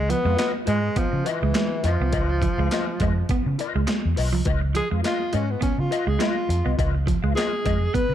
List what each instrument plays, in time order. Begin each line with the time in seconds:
Already playing: fingered electric bass C#2, alto saxophone G#3
0.08 clean electric guitar F3, alto saxophone B3, muted clean electric guitar stroke, closed hi-hat
0.25 fingered electric bass F2, clean electric guitar G#3 F4 B4 F5
0.36 alto saxophone B3, clean electric guitar F4 B4 D#5, snare, clap, closed hi-hat
0.54 muted clean electric guitar stroke
0.66 fingered electric bass G#2, clean electric guitar G#3 F4 B4 D#5, alto saxophone G#3, closed hi-hat
0.82 muted clean electric guitar stroke
0.96 alto saxophone F3, clean electric guitar B3, muted fingered electric bass stroke, kick, closed hi-hat
1.12 fingered electric bass C#3, muted clean electric guitar stroke
1.24 alto saxophone E3, clean electric guitar F4 B4 D#5, muted clean electric guitar stroke, closed hi-hat
1.41 fingered electric bass C#2, clean electric guitar G#3, muted clean electric guitar stroke
1.53 clean electric guitar G#3, muted clean electric guitar stroke, snare, clap, closed hi-hat
1.83 fingered electric bass F2, alto saxophone F3, clean electric guitar F4 B4 D#5, muted clean electric guitar stroke, closed hi-hat
2.00 fingered electric bass C2, clean electric guitar B3, muted clean electric guitar stroke
2.11 fingered electric bass C#2, clean electric guitar F4 B4 D#5, kick, closed hi-hat
2.30 muted clean electric guitar stroke
2.42 clean electric guitar F3, muted clean electric guitar stroke, kick, closed hi-hat
2.58 fingered electric bass C#2, clean electric guitar G#3 F4 B4 F5
2.71 clean electric guitar F4 B4 D#5, snare, clap, closed hi-hat
2.87 muted clean electric guitar stroke
3.00 fingered electric bass F2, clean electric guitar G#3 F4 B4 D#5, kick, closed hi-hat
3.18 muted clean electric guitar stroke
3.29 clean electric guitar B3, muted fingered electric bass stroke, kick, closed hi-hat
3.46 fingered electric bass C#3, muted clean electric guitar stroke
3.58 clean electric guitar F4 B4 D#5, muted clean electric guitar stroke, closed hi-hat
3.75 fingered electric bass C#2, clean electric guitar G#3, muted clean electric guitar stroke
3.87 clean electric guitar G#3, muted clean electric guitar stroke, snare, clap, closed hi-hat
4.05 fingered electric bass E2
4.16 fingered electric bass B1, clean electric guitar F4 B4 D#5, muted clean electric guitar stroke, open hi-hat
4.33 fingered electric bass C2, clean electric guitar F3, muted clean electric guitar stroke
4.45 fingered electric bass C#2, clean electric guitar F4 B4 D#5, kick, closed hi-hat
4.61 muted clean electric guitar stroke
4.75 clean electric guitar F3, alto saxophone G#4, muted clean electric guitar stroke, closed hi-hat
4.91 fingered electric bass F2, clean electric guitar G#3 F4 B4 F5
5.03 clean electric guitar F4 B4 D#5, alto saxophone F4, snare, clap, closed hi-hat
5.20 muted clean electric guitar stroke
5.32 fingered electric bass G#2, clean electric guitar G#3 F4 B4 D#5, alto saxophone C#4, closed hi-hat
5.50 alto saxophone B3, muted clean electric guitar stroke
5.61 clean electric guitar B3, alto saxophone C#4, muted fingered electric bass stroke, kick, closed hi-hat
5.78 fingered electric bass C#3, alto saxophone F4, muted clean electric guitar stroke
5.91 clean electric guitar F4 B4 D#5, muted clean electric guitar stroke, closed hi-hat
6.07 fingered electric bass C#2, clean electric guitar G#3, alto saxophone G#4, muted clean electric guitar stroke
6.19 clean electric guitar G#3 F4 B4 D#5, alto saxophone F4, snare, clap, closed hi-hat
6.48 fingered electric bass F2, muted clean electric guitar stroke, closed hi-hat
6.65 fingered electric bass C2, clean electric guitar B3 F4 B4 D#5
6.77 fingered electric bass C#2, clean electric guitar F4 B4 D#5, kick, closed hi-hat
6.93 muted clean electric guitar stroke
7.06 clean electric guitar F3, muted clean electric guitar stroke, kick, closed hi-hat
7.22 fingered electric bass C#2, clean electric guitar G#3 F4 B4 F5
7.35 clean electric guitar F4 B4 D#5, alto saxophone G#4, snare, clap, closed hi-hat
7.51 muted clean electric guitar stroke
7.64 fingered electric bass F2, clean electric guitar G#3 F4 B4 D#5, kick, closed hi-hat
7.81 muted clean electric guitar stroke
7.94 clean electric guitar B3, alto saxophone B4, muted fingered electric bass stroke, kick, closed hi-hat
8.09 fingered electric bass C#3, muted clean electric guitar stroke